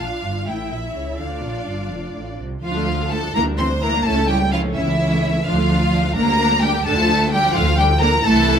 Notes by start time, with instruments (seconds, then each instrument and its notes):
Already playing: viola section D4 F4, violin section F5
0.00 double bass section A#1, cello section A#2, violin section F5
0.23 double bass section G1, cello section G2
0.47 double bass section A1, cello section A2, viola section E4, violin section E5 G5
0.71 double bass section A#1, cello section A#2, violin section E5
0.95 double bass section C#2, cello section C#3, violin section C#5
1.19 double bass section D2, cello section D3, viola section D4 F4, violin section D5 F5
1.43 double bass section A#1, cello section A#2
1.66 double bass section G1, cello section G2
1.90 double bass section F1, cello section F2
2.15 double bass section A1, cello section A2
2.39 double bass section C2, cello section C3
2.63 double bass section D2, cello section F3, viola section F3 F4, violin section F4 F5
2.76 viola section A3 D4
2.87 viola section F3 F4
2.99 viola section A3 D4
3.11 viola section F3 F4, cello section A3, violin section A4 A5
3.23 viola section A3 D4
3.34 double bass section D2, viola section E3 E4, cello section A#3, violin section A#4 A#5
3.46 viola section G3 D4
3.58 viola section E3 E4, cello section C4, violin section C5 C6
3.70 viola section G3 D4
3.82 viola section E3 E4, cello section A#3, violin section A#4 A#5
3.94 viola section G3 D4
4.05 double bass section C#2, cello section A3, viola section C#4 E4, violin section A4 A5
4.17 viola section A3 C#4
4.28 cello section G3, viola section C#4 E4, violin section G4 G5
4.40 viola section A3 C#4
4.52 cello section F3, viola section C#4 E4, violin section F4 F5
4.64 viola section A3 C#4
4.74 double bass section C#2, cello section E3, viola section C#4 E4, violin section E4 E5
4.88 viola section A3 C#4
5.00 viola section C#4 E4
5.12 viola section A3 C#4
5.24 viola section C#4 E4
5.35 viola section A3 C#4
5.45 double bass section D2, viola section F3 D4, cello section F3, violin section F4 F5
5.58 viola section A3 F4
5.70 viola section F3 D4
5.81 viola section A3 F4
5.93 viola section F3 D4
6.05 viola section A3 F4
6.16 double bass section D2, cello section A#3, viola section A#3 D4, violin section A#4 A#5
6.28 viola section G3 A#3
6.39 viola section A#3 D4
6.51 viola section G3 A#3
6.62 cello section G3, viola section A#3 D4, violin section G4 G5
6.74 viola section G3 A#3
6.85 double bass section D2, viola section D3 D4, cello section A3, violin section A4 A5
6.98 viola section F3 F4
7.10 viola section D3 D4
7.21 viola section F3 F4
7.32 viola section D3 D4, cello section G3, violin section G4 G5
7.44 viola section F3 F4
7.55 double bass section D2, viola section D3 D4, cello section F3, violin section F4 F5
7.68 viola section F3 F4
7.78 viola section D3 D4, cello section G3, violin section G4 G5
7.91 viola section F3 F4
8.01 viola section D3 D4, cello section A#3, violin section A#4 A#5
8.13 viola section F3 F4
8.23 double bass section C2, viola section E3 E4, cello section A3, violin section A4 A5